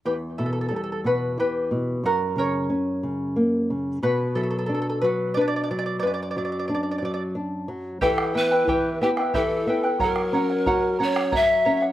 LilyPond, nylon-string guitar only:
\new Staff \with { instrumentName = "Nylon-string guitar" } { \clef bass \time 3/4 \key e \dorian \tempo 4 = 90 e,8 b,8 g8 b,8 e8 b,8 | fis,8 cis8 cis'8 cis8 ais8 cis8 | b,8 fis8 d'8 fis8 d'8 fis8 | fis,8 fis8 d'8 fis8 d'8 fis8 |
e8 b8 e8 b8 e8 b8 | fis8 cis'8 fis'8 cis'8 fis'8 cis'8 | }